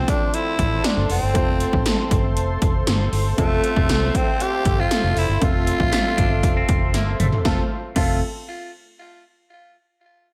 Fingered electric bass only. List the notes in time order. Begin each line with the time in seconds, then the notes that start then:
0.59 A1
0.97 G1
1.10 F1
1.23 G1
1.35 F1
1.73 A1
2.11 G1
2.36 F1
2.62 F1
2.88 G1
3.12 G1
3.38 F1
3.76 F1
3.89 C2
4.66 G1
5.04 F1
5.16 F1
5.29 G1
5.42 F1
5.80 A1
6.18 G1
6.43 F1
6.69 F1
6.94 G1
7.19 G1
7.45 F1
7.96 F1